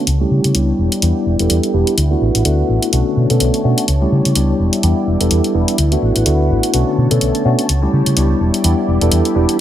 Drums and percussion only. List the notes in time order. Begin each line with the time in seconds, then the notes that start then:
0.07 closed hi-hat
0.44 closed hi-hat
0.55 closed hi-hat
0.92 closed hi-hat
1.02 closed hi-hat
1.39 closed hi-hat
1.50 closed hi-hat
1.63 closed hi-hat
1.87 closed hi-hat
1.98 closed hi-hat
2.35 closed hi-hat
2.45 closed hi-hat
2.82 closed hi-hat
2.93 closed hi-hat
3.30 closed hi-hat
3.40 closed hi-hat
3.54 closed hi-hat
3.78 closed hi-hat
3.88 closed hi-hat
4.25 closed hi-hat
4.35 closed hi-hat
4.73 closed hi-hat
4.83 closed hi-hat
5.21 closed hi-hat
5.31 closed hi-hat
5.44 closed hi-hat
5.68 closed hi-hat
5.78 closed hi-hat
5.92 closed hi-hat
6.16 closed hi-hat
6.26 closed hi-hat
6.63 closed hi-hat
6.74 closed hi-hat
7.11 closed hi-hat
7.21 closed hi-hat
7.35 closed hi-hat
7.59 closed hi-hat
7.69 closed hi-hat
8.06 closed hi-hat
8.17 closed hi-hat
8.54 closed hi-hat
8.64 closed hi-hat
9.01 closed hi-hat
9.12 closed hi-hat
9.25 closed hi-hat
9.49 closed hi-hat